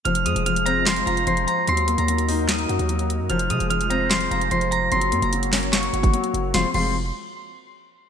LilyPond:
<<
  \new Staff \with { instrumentName = "Harp" } { \time 4/4 \key f \phrygian \tempo 4 = 148 f'''8 ees'''8 f'''8 bes''8 c'''8 bes''8 c'''8 bes''8 | c'''8. bes''4~ bes''16 ees'''2 | f'''8 ees'''8 f'''8 bes''8 c'''8 bes''8 c'''8 bes''8 | c'''8. bes''4~ bes''16 des'''2 |
c'''8 c'''8 r2. | }
  \new Staff \with { instrumentName = "Analog synth pad" } { \time 4/4 \key f \phrygian <aes f' c''>1 | <ges ees' bes'>1 | <aes f' c''>1 | <bes ges' des''>1 |
r1 | }
  \new Staff \with { instrumentName = "Grand piano" } { \clef bass \time 4/4 \key f \phrygian f8 aes8 f8 c'8 f8 f'8 f4 | ges8 bes8 ges8 ees'8 ges8 ges'8 ges4 | f8 aes8 f8 c'8 f8 f'8 f4 | ges8 bes8 ges8 des'8 ges8 ges'8 ges4 |
<f aes c' f'>8 <f aes c' f'>8 r2. | }
  \new Staff \with { instrumentName = "808-style bass" } { \clef bass \time 4/4 \key f \phrygian f,,8 f,16 f,,4.~ f,,16 f,,8 f,,8 r8 | ees,8. ees,4.~ ees,16 ges,16 ees,4 ges,16 | f,,8 c16 f,,4.~ f,,16 f,,8 f,,4 | ges,,8 ges,16 ges,,4.~ ges,,16 ges,,8 r8 ges,,8 |
f,,16 r16 f,,4 r2 r8 | }
  \new DrumStaff \with { instrumentName = "Drums" } \drummode { \time 4/4 hh16 hh16 hh16 hh16 hh16 hh16 hh8 <hc hh sn>16 hh16 hh16 hh16 hh16 hh16 hh8 | hh16 hh16 hh16 hh16 hh16 hh16 hho8 <hc hh sn>16 hh16 hh16 hh16 hh16 hh16 hh8 | hh16 hh16 hh16 hh16 hh16 hh16 hh8 <hc hh sn>16 hh16 hh16 hh16 hh16 hh16 hh8 | hh16 hh16 hh16 hh16 hh16 hh16 <hc hh hho sn>16 hh16 <hc hh sn>16 hh16 hh16 <hh bd>16 hh16 hh16 hh8 |
sn8 cymc8 r4 r4 r4 | }
>>